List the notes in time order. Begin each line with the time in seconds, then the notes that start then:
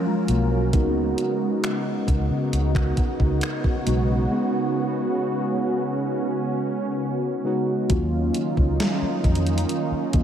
Already playing: F3 F#3 C#4 F4 A#4
0.07 G#3 F4
0.28 B1 A#3 F#4, closed hi-hat
0.52 C#4 A#4
0.73 C#2 C#3 G#3 B3 D#4 F#4, kick, closed hi-hat
1.18 closed hi-hat
1.64 finger snap, closed hi-hat
2.08 C#2, kick, closed hi-hat
2.30 C#3
2.53 C#2, closed hi-hat
2.75 finger snap, kick
2.97 kick, closed hi-hat
3.20 C#2, kick
3.41 finger snap, closed hi-hat
3.64 kick
3.86 B1 G#3 B3 D#4 F#4, closed hi-hat
4.31 G#3 B3 C#4 D#4 F#4
7.44 G#3 B3 D#4 F#4
7.89 D#2 D#3 F#3 A#3 C#4 D#4 F4, kick, closed hi-hat
8.34 closed hi-hat
8.57 C#2, kick
8.80 snare, closed hi-hat
9.02 muted fingered electric bass stroke
9.24 F2, kick, closed hi-hat
9.35 closed hi-hat
9.47 closed hi-hat
9.58 closed hi-hat
9.69 closed hi-hat
9.92 muted fingered electric bass stroke
10.13 D#2 F#3 A#3 C#4 F4, kick, closed hi-hat